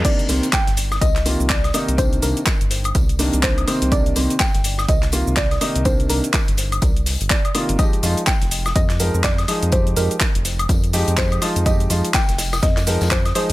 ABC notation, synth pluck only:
X:1
M:4/4
L:1/8
Q:"Swing 16ths" 1/4=124
K:Cm
V:1 name="Synth pluck"
d2 g2 e2 d2 | c B4- B c2 | d2 g2 e2 d2 | c B4- B d2 |
e2 g2 e2 d2 | c B4- B c2 | e2 g2 e2 c c |]